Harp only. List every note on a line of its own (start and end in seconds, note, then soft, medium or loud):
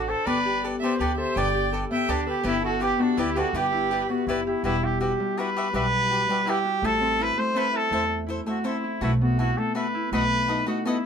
0.00 0.26 B3 medium
0.00 2.52 D4 medium
0.00 0.51 F#4 medium
0.09 0.63 A4 medium
0.26 0.81 B3 medium
0.45 0.99 G4 medium
0.63 1.17 A4 medium
0.82 1.90 B3 medium
1.00 1.54 G4 medium
1.17 1.72 A4 medium
1.54 2.80 G4 medium
1.72 2.26 A4 medium
1.91 2.43 B3 medium
2.27 4.46 A4 medium
2.44 2.99 B3 medium
2.62 3.17 E4 medium
2.81 3.35 G4 medium
2.99 4.09 B3 medium
3.17 3.72 E4 medium
3.35 3.90 G4 medium
3.72 4.82 E4 medium
3.91 4.46 G4 medium
4.09 7.07 B3 medium
4.47 5.07 G4 medium
4.64 5.19 G3 medium
4.82 5.37 E4 medium
5.01 5.26 F#4 medium
5.20 5.72 G3 medium
5.38 6.45 E4 medium
5.56 5.79 F#4 medium
5.73 6.27 G3 medium
6.10 6.34 F#4 medium
6.28 6.87 G3 medium
6.45 7.19 E4 medium
6.65 9.08 F#4 medium
6.82 7.37 A3 medium
7.01 7.54 C4 medium
7.19 7.73 E4 medium
7.37 7.91 A3 medium
7.55 8.64 C4 medium
7.73 8.26 E4 medium
7.91 8.46 A3 medium
8.27 8.83 E4 medium
8.46 9.01 A3 medium
8.64 9.27 C4 medium
8.84 9.39 E4 medium
9.02 9.58 A3 medium
9.21 9.75 B3 medium
9.39 9.94 E4 medium
9.58 10.12 A3 medium
9.76 10.85 B3 medium
9.95 10.54 E4 medium
10.12 10.66 A3 medium
10.48 11.04 D#4 medium
10.67 11.06 A3 medium
10.85 11.06 B3 medium